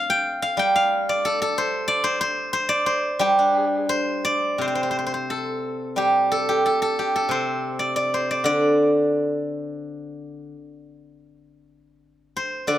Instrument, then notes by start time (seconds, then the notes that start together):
guzheng
Already playing: C5 D5 F5
0.10 G5
0.42 F5
0.57 G3 G5
0.76 F5
1.09 D5
1.25 A4
1.42 A4
1.58 C5
1.88 D5
2.04 C5
2.21 C5
2.53 C5
2.69 D5
2.86 C5
3.19 G3 G4
3.39 D4
3.89 C5
4.25 D5
4.58 C3 C5
4.68 C5
4.75 C5
4.83 C5
4.91 C5
4.99 C5
5.07 C5
5.14 C5
5.30 A4
5.96 G3 G4
6.32 A4
6.49 G4
6.66 A4
6.82 A4
6.99 G4
7.16 A4
7.29 C3 C5
7.79 D5
7.96 D5
8.14 C5
8.31 D5
8.44 D3 D5
12.37 C5
12.67 D3 D5